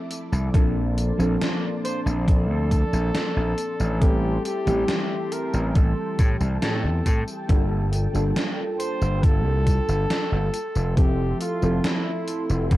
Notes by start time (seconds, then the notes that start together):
Already playing: F3 A3 C4 E4 A4 E5 D6
0.11 closed hi-hat, tambourine
0.32 C2, tambourine
0.53 A#1 F3 A#3 C4 D4 A4 D5 A5 C6, kick, closed hi-hat, tambourine
0.98 closed hi-hat, tambourine
1.18 A#1 F3 A#3 C4 D4 A4, tambourine
1.41 snare, closed hi-hat, tambourine
1.84 C5, closed hi-hat, tambourine
2.06 A#1, tambourine
2.27 A4, kick, closed hi-hat, tambourine
2.49 D2
2.71 kick, closed hi-hat, tambourine
2.93 A#1, tambourine
3.15 snare, closed hi-hat, tambourine
3.37 A#1
3.58 closed hi-hat, tambourine
3.80 A1, tambourine
4.01 G3 A3 C4 E4 G4 A4 E5 G5 A5 C6, kick, closed hi-hat, tambourine
4.45 G4, closed hi-hat, tambourine
4.66 A1 E3 G3 C4 E4 G4, closed hi-hat, tambourine
4.88 snare, closed hi-hat, tambourine
5.32 A#4, closed hi-hat, tambourine
5.54 A1, tambourine
5.68 A#4
5.75 A1 A4, kick, closed hi-hat, tambourine
6.19 A2, kick, closed hi-hat, tambourine
6.40 C2, tambourine
6.62 A2 A4, snare, closed hi-hat, tambourine
6.84 E2
7.06 A2, kick, closed hi-hat, tambourine
7.28 tambourine
7.48 G1 G3 A#3 D4 F4 A4, kick, closed hi-hat, tambourine
7.93 closed hi-hat, tambourine
8.13 G1 G3 A#3 D4 F4 A4, tambourine
8.36 snare, closed hi-hat, tambourine
8.80 C5, closed hi-hat, tambourine
9.01 G1, tambourine
9.23 A4, kick, closed hi-hat, tambourine
9.45 C2
9.67 kick, closed hi-hat, tambourine
9.88 G1, tambourine
10.10 snare, closed hi-hat, tambourine
10.32 G1
10.53 A4 E5 C6, closed hi-hat, tambourine
10.75 F1, tambourine
10.97 F3 A3 C4 E4 G4 A4, kick, closed hi-hat, tambourine
11.41 F4, closed hi-hat, tambourine
11.61 F1 F3 A3 C4 E4 A4, tambourine
11.84 E4, snare, closed hi-hat, tambourine
12.27 G5, closed hi-hat, tambourine
12.50 F1, tambourine
12.71 F1, kick, closed hi-hat, tambourine